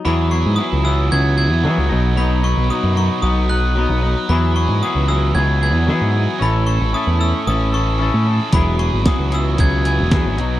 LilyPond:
<<
  \new Staff \with { instrumentName = "Glockenspiel" } { \time 4/4 \key e \major \tempo 4 = 113 b''8 cis'''8 dis'''8 e'''8 gis'''8 gis'''4 r8 | b''8 cis'''8 dis'''8 cis'''8 dis'''8 fis'''4 r8 | b''8 cis'''8 dis'''8 e'''8 gis'''8 gis'''4 r8 | b''8 cis'''8 dis'''8 e'''8 dis'''8 cis'''4 r8 |
b''8 cis'''8 dis'''8 e'''8 gis'''8 gis'''4 r8 | }
  \new Staff \with { instrumentName = "Clean electric guitar" } { \time 4/4 \key e \major <fis b e' gis'>8 <b e' gis'>8 <fis b e' gis'>8 <fis b e' gis'>8 <fis b e' gis'>8 <b e' gis'>8 <fis b e' gis'>8 <fis b dis'>8 | <fis b dis'>8 <b dis'>8 <fis b dis'>8 <fis b dis'>8 <fis b dis'>8 <b dis'>8 <fis b dis'>8 <b dis'>8 | <fis b e' gis'>8 <b e' gis'>8 <fis b e' gis'>8 <fis b e' gis'>8 <fis b e' gis'>8 <b e' gis'>8 <fis b e' gis'>8 <b e' gis'>8 | <cis' e' a'>8 <e' a'>8 <cis' e' a'>8 <cis' e' a'>8 <cis' e' a'>8 <e' a'>8 <cis' e' a'>8 <e' a'>8 |
<fis b e' gis'>8 <b e' gis'>8 <fis b e' gis'>8 <fis b e' gis'>8 <fis b e' gis'>8 <b e' gis'>8 <fis b e' gis'>8 <fis b dis'>8 | }
  \new Staff \with { instrumentName = "Distorted electric guitar" } { \time 4/4 \key e \major e8 gis'8 e'8 fis8 b8 gis'8 b8 b,8 | b,8 b'8 dis'8 fis8 b8 b'8 b8 b'8 | e8 gis'8 fis'8 fis8 b8 gis'8 b8 gis'8 | a,8 a'8 e'8 a8 cis'8 a'8 cis'8 a'8 |
e8 gis'8 fis'8 fis8 b8 gis'8 b8 b,8 | }
  \new Staff \with { instrumentName = "Picked electric bass" } { \clef bass \time 4/4 \key e \major e,8. gis,16 r16 cis,8. cis,8. e,16 e16 cis,16 b,,8~ | b,,8. b,,16 r16 fis,8 r16 b,,4~ b,,16 b,,8 r16 | e,8. gis,16 r16 cis,8. cis,8. e,16 e16 gis,8 r16 | a,,8. a,,16 r16 e,8 r16 a,,4~ a,,16 a,8 r16 |
e,,8. gis,,16 r16 cis,8. cis,8. e,,16 e,16 gis,,16 b,,8 | }
  \new DrumStaff \with { instrumentName = "Drums" } \drummode { \time 4/4 r4 r4 r4 r4 | r4 r4 r4 r4 | r4 r4 r4 r4 | r4 r4 r4 r4 |
<hh bd>8 hh8 <hh bd sn>8 hh8 <hh bd>8 hh8 <hh bd sn>8 hh8 | }
>>